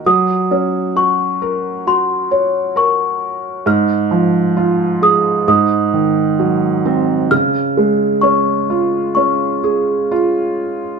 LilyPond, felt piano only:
\new Staff \with { instrumentName = "Felt piano" } { \time 4/4 \key des \major \tempo 4 = 66 ges8 des'8 ges'8 bes'8 ges'8 des''8 bes'4 | aes,8 f8 f'8 aes'8 aes,8 ees8 ges8 c'8 | des8 aes8 des'8 f'8 des'8 aes'8 f'4 | }